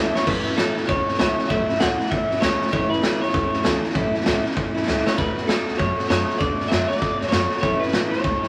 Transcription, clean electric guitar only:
0.15 0.27 C#5 medium
0.27 0.56 B4 medium
0.57 0.89 A4 medium
0.87 1.18 C#5 medium
1.19 1.48 C#5 loud
1.49 1.80 E5 loud
1.80 2.11 F#5 loud
2.11 2.41 E5 loud
2.41 2.71 C#5 loud
2.72 2.90 C#5 loud
2.90 3.21 B4 medium
3.21 3.80 C#5 medium
5.06 5.11 C#5 medium
5.18 5.50 B4 medium
5.48 5.80 A4 medium
5.78 6.08 C#5 medium
6.09 6.38 C#5 loud
6.39 6.68 D5 loud
6.68 6.87 E5 loud
6.88 7.28 D5 loud
7.29 7.60 C#5 loud
7.61 7.82 C#5 loud
7.80 8.12 B4 loud
8.11 8.48 C#5 medium

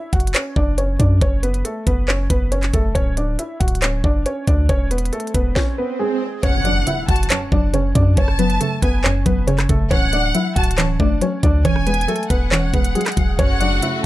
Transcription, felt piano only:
0.13 0.31 F#4 medium
0.13 0.30 F#5 medium
0.34 0.53 C#4 medium
0.34 0.52 C#5 medium
0.56 0.74 D4 medium
0.56 0.74 D5 medium
0.78 0.96 C#4 medium
0.78 0.96 C#5 medium
0.99 1.18 D4 medium
0.99 1.17 D5 medium
1.22 1.40 C#4 medium
1.22 1.39 C#5 loud
1.43 1.61 B3 medium
1.43 1.61 B4 medium
1.65 1.83 A3 medium
1.65 1.82 A4 medium
1.87 2.05 B3 medium
1.87 2.04 B4 medium
2.08 2.26 C#4 medium
2.08 2.26 C#5 medium
2.30 2.48 B3 medium
2.30 2.48 B4 medium
2.52 2.70 C#4 medium
2.52 2.69 C#5 medium
2.74 2.92 A3 medium
2.74 2.91 A4 medium
2.95 3.13 C#4 medium
2.95 3.13 C#5 loud
3.17 3.35 D4 medium
3.17 3.35 D5 medium
3.39 3.57 E4 medium
3.39 3.56 E5 medium
3.60 3.78 F#4 medium
3.60 3.78 F#5 medium
3.82 4.00 C#4 medium
3.82 4.00 C#5 medium
4.04 4.22 D4 medium
4.04 4.22 D5 medium
4.26 4.44 C#4 medium
4.26 4.44 C#5 medium
4.47 4.66 D4 medium
4.47 4.65 D5 medium
4.69 4.87 C#4 medium
4.69 4.87 C#5 loud
4.91 5.09 B3 medium
4.91 5.09 B4 medium
5.13 5.31 A3 medium
5.13 5.30 A4 medium
5.34 5.53 B3 medium
5.34 5.52 B4 medium
5.55 5.74 C#4 medium
5.55 5.73 C#5 medium
5.78 5.96 B3 medium
5.78 5.96 B4 medium
5.99 6.41 G#3 medium
5.99 6.40 G#4 medium
6.43 6.61 C#4 medium
6.43 6.61 C#5 loud
6.65 6.83 D4 medium
6.65 6.83 D5 medium
6.87 7.05 E4 medium
6.87 7.04 E5 medium
7.08 7.27 F#4 medium
7.08 7.26 F#5 medium
7.30 7.48 C#4 medium
7.30 7.48 C#5 medium
7.52 7.70 D4 medium
7.52 7.70 D5 medium
7.74 7.92 C#4 medium
7.74 7.91 C#5 medium
7.95 8.13 D4 medium
7.95 8.13 D5 medium
8.18 8.36 C#4 medium
8.18 8.35 C#5 loud
8.39 8.57 B3 medium
8.39 8.56 B4 medium
8.60 8.79 A3 medium
8.60 8.78 A4 medium
8.82 9.01 B3 medium
8.82 9.00 B4 medium
9.04 9.22 C#4 medium
9.04 9.22 C#5 medium
9.26 9.44 B3 medium
9.26 9.44 B4 medium
9.47 9.66 C#4 medium
9.47 9.65 C#5 medium
9.69 9.87 A3 medium
9.69 9.87 A4 medium
9.91 10.09 C#4 medium
9.91 10.08 C#5 loud
10.13 10.31 D4 medium
10.13 10.31 D5 medium
10.35 10.53 E4 medium
10.35 10.52 E5 medium
10.56 10.74 F#4 medium
10.56 10.74 F#5 medium
10.78 10.96 C#4 medium
10.78 10.95 C#5 medium
11.00 11.18 D4 medium
11.00 11.17 D5 medium
11.22 11.40 C#4 medium
11.22 11.39 C#5 medium
11.43 11.61 D4 medium
11.43 11.61 D5 medium
11.65 11.83 C#4 medium
11.65 11.83 C#5 loud
11.87 12.05 B3 medium
11.87 12.04 B4 medium
12.08 12.26 A3 medium
12.08 12.26 A4 loud
12.30 12.48 B3 medium
12.30 12.48 B4 medium
12.51 12.70 C#4 medium
12.51 12.69 C#5 medium
12.74 12.92 B3 medium
12.74 12.91 B4 medium
12.95 13.36 G#3 medium
12.95 13.36 G#4 medium
13.39 13.57 C#4 medium
13.39 13.56 C#5 loud
13.60 13.79 D4 medium
13.60 13.78 D5 medium
13.82 14.00 E4 medium
13.82 14.00 E5 medium

